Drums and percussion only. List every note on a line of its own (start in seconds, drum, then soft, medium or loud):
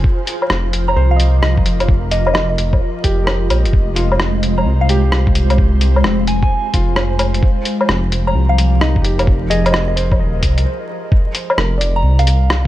0.04 kick loud
0.27 closed hi-hat medium
0.42 low woodblock medium
0.50 cross-stick loud
0.73 closed hi-hat medium
0.88 low woodblock soft
1.20 closed hi-hat medium
1.43 cross-stick loud
1.57 kick loud
1.66 closed hi-hat medium
1.80 closed hi-hat soft
1.80 low woodblock soft
1.89 kick loud
2.11 closed hi-hat soft
2.27 low woodblock medium
2.35 cross-stick loud
2.58 closed hi-hat medium
2.73 kick loud
2.73 low woodblock soft
3.04 kick medium
3.04 closed hi-hat soft
3.27 cross-stick loud
3.27 low woodblock medium
3.50 closed hi-hat medium
3.50 low woodblock medium
3.65 closed hi-hat soft
3.73 kick loud
3.96 closed hi-hat soft
4.12 low woodblock medium
4.20 cross-stick loud
4.43 closed hi-hat soft
4.58 low woodblock soft
4.89 closed hi-hat soft
5.12 cross-stick loud
5.27 kick loud
5.35 closed hi-hat medium
5.50 closed hi-hat soft
5.50 low woodblock medium
5.58 kick loud
5.81 closed hi-hat soft
5.96 low woodblock medium
6.04 cross-stick loud
6.27 closed hi-hat medium
6.42 kick loud
6.74 kick medium
6.74 closed hi-hat soft
6.96 cross-stick loud
6.96 low woodblock medium
7.19 closed hi-hat medium
7.19 low woodblock medium
7.34 closed hi-hat soft
7.43 kick loud
7.65 closed hi-hat medium
7.81 low woodblock medium
7.89 cross-stick loud
8.12 closed hi-hat medium
8.27 low woodblock soft
8.58 closed hi-hat medium
8.81 cross-stick loud
8.96 kick loud
9.05 closed hi-hat medium
9.19 closed hi-hat soft
9.19 low woodblock medium
9.27 kick loud
9.51 closed hi-hat medium
9.66 closed hi-hat soft
9.66 low woodblock medium
9.74 cross-stick loud
9.97 closed hi-hat medium
10.11 kick medium
10.11 low woodblock soft
10.43 kick medium
10.43 closed hi-hat medium
10.58 closed hi-hat soft
11.12 kick loud
11.35 closed hi-hat medium
11.50 low woodblock medium
11.58 cross-stick loud
11.81 closed hi-hat medium
12.19 closed hi-hat soft
12.27 closed hi-hat medium
12.50 cross-stick loud